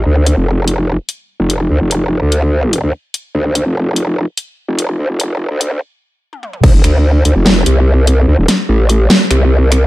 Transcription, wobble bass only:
X:1
M:4/4
L:1/16
Q:1/4=146
K:Dphr
V:1 name="Wobble bass" clef=bass
D,,3 F,,,6 z4 F,,,3 | D,, F,,,4 D,,6 D,, z4 | D,,3 F,,,6 z4 F,,,3 | D,, F,,,4 D,,3 z8 |
D,, E,,, D,,4 D,, F,,,3 C,,6 | D,, E,,, z2 A,,,4 z2 C,,6 |]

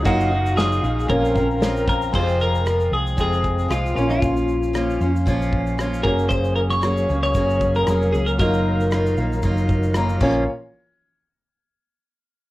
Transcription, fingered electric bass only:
X:1
M:4/4
L:1/8
Q:"Swing 16ths" 1/4=115
K:Bbm
V:1 name="Fingered electric bass" clef=bass
G,,,3 B,,, B,,,4 | F,,,3 C,, F,,,2 C,, B,,, | B,,,3 F,, B,,,3 G,,,- | G,,,3 D,, G,,,2 F,,, D,, |
G,,,3 B,,, G,,,3 B,,, | z8 |]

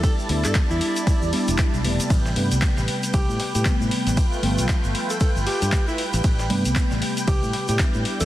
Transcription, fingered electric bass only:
X:1
M:4/4
L:1/16
Q:"Swing 16ths" 1/4=116
K:Am
V:1 name="Fingered electric bass" clef=bass
z2 D,, G,, z E,, z3 E,, z E,,, z B,,, E,,, z | A,,,2 G,, C,, z A,,, z2 C,, A,, z A,, z A,, z A,,, | z2 G,,, B,,, z G,,, z3 G,,, z G,, z3 A,,, | A,,,2 G,, C,, z A,,, z2 C,, A,, z A,, z A,, z E,, |]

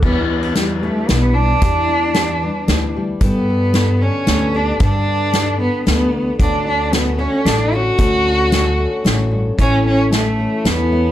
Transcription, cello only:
X:1
M:3/4
L:1/16
Q:1/4=113
K:Edor
V:1 name="Cello"
B,2 B,2 G,2 A,2 B,2 D2- | D8- D2 z2 | B,6 C4 D2 | D6 B,2 B,3 z |
D2 D2 B,2 C2 D2 F2- | F8- F2 z2 | C2 C2 A,4 B,4 |]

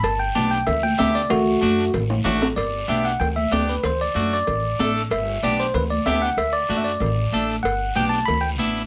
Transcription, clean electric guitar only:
X:1
M:4/4
L:1/8
Q:1/4=189
K:G
V:1 name="Clean electric guitar"
z2 [B,DG] z3 [B,DG] z | z2 [A,DF] z3 [A,DF] z | z2 [B,DG] z3 [B,DG] z | z2 [A,DF] z3 [A,DA] z |
z2 [B,DG] z3 [B,DG] z | z2 [A,DF] z3 [A,DA] z | z2 [B,DG] z3 [B,DE] z |]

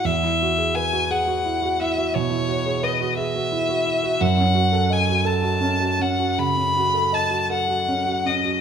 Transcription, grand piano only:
X:1
M:12/8
L:1/16
Q:3/8=57
K:F#dor
V:1 name="Grand piano"
E,, E F G B F G F E F E F B,, E F G B F G F E F E F | F,, C F A d F A F C F C F C, C F A d F A F C F C F |]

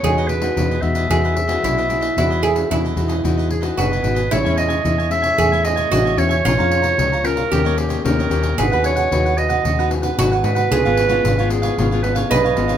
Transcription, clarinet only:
X:1
M:4/4
L:1/8
Q:1/4=112
K:E
V:1 name="Clarinet"
c B2 e4- e- | e4- e G B2 | c d2 e2 d2 c- | c3 ^A2 =G A2 |
B c2 d2 z2 B- | B3 G2 B d2 |]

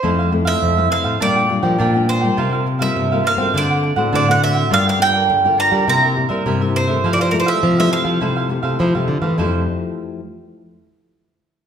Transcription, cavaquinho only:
X:1
M:4/4
L:1/16
Q:1/4=103
K:F
V:1 name="Cavaquinho"
[EAcf] [Acf] z [Acf]2 [Acf] [EAcf] [Acf] [DBdg] [Bdg] z [Bdg] [DBdg] [Bdg]2 [Bdg] | [FBcf] [Bcf] z [Bcf]2 [Bcf] [FBcf] [Bcf] [DAc^f] [Acf] z [Acf] [DAcf] [Acf]2 [Acf] | [FBdg] [Bdg] z [Bdg]2 [Bdg] [FBdg] [Bdg] [EBce] [Bce] z [Bce] [EBce] [Bce]2 [Bce] | [EAcf] [Acf] z [Acf]2 [Acf] [EAcf] [Acf] [EAcf] [Acf] z [Acf] [EAcf] [Acf]2 [Acf] |
[EAcf]2 z12 z2 |]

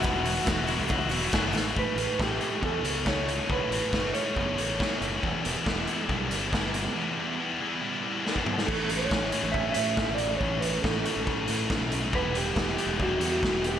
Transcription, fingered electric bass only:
X:1
M:4/4
L:1/16
Q:1/4=139
K:Amix
V:1 name="Fingered electric bass" clef=bass
E,,,4 E,,,3 C,,3 E,,,2 F,,,2 A,,,2 | A,,, z A,,, z A,,,2 z2 E,,2 C,,6 | C,, z A,,, z F,,,2 z2 F,,,2 A,,,2 z2 F,,,2 | E,,, z E,,, z E,,,2 z2 B,,,2 G,,,6 |
z16 | A,,,4 A,,,2 z A,,,3 A,,3 A,,,3 | A,,,4 A,,,2 z A,,,3 A,,3 B,,,3 | E,,,4 E,,,2 z E,,,3 E,,3 E,,,3 |]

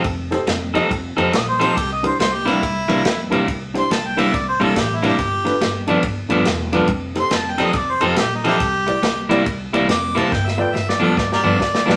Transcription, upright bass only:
X:1
M:4/4
L:1/8
Q:"Swing" 1/4=140
K:Cmix
V:1 name="Upright bass" clef=bass
F,,,2 F,,,2 F,,, F,,, B,,,2 | C,,2 C,,2 C,, C,, F,,2 | C,,2 C,,2 C,, C,, A,,,2 | G,,,2 G,,,2 G,,, G,,, E,,,2 |
F,,,2 F,,,2 F,,, F,,, B,,,2 | C,,2 C,,2 C,, C,, F,,,2 | G,,,2 G,,,2 G,,, G,,, D,,2 |]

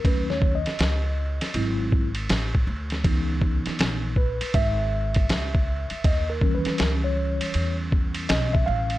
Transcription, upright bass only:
X:1
M:4/4
L:1/16
Q:"Swing 16ths" 1/4=80
K:D#phr
V:1 name="Upright bass" clef=bass
D,,3 z C,,3 z G,,,4 =A,,,2 =D,,2 | C,,3 z A,,,3 z G,,,4 C,,3 z | D,,3 z C,,3 z E,,4 B,,,2 =A,,,2 |]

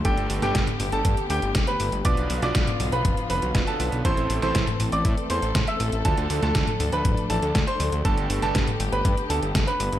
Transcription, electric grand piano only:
X:1
M:4/4
L:1/16
Q:1/4=120
K:Gmix
V:1 name="Electric grand piano"
[G,,B,DGA]3 [G,,B,DGA]2 z8 z3 | [B,,B,DFB]3 [B,,B,DFB]2 z6 z [B,,B,DFB]2 [B,DFB]2 | [A,,A,CEA]3 [A,,A,CEA]2 z8 z3 | [D,A,DFA]3 [D,A,DFA]2 z8 z3 |
[G,,B,DGA]3 [G,,B,DGA]2 z8 z3 |]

